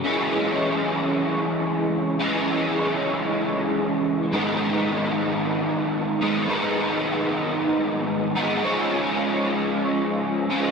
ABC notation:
X:1
M:4/4
L:1/8
Q:1/4=112
K:G#m
V:1 name="Overdriven electric guitar" clef=bass
[C,E,G,C]8 | [C,E,G,C]8 | [G,,D,G,B,D]6- [G,,D,G,B,D] [G,,D,G,B,D] | [G,,D,G,B,D]6- [G,,D,G,B,D] [G,,D,G,B,D] |
[C,^E,G,C]6- [C,E,G,C] [C,E,G,C] |]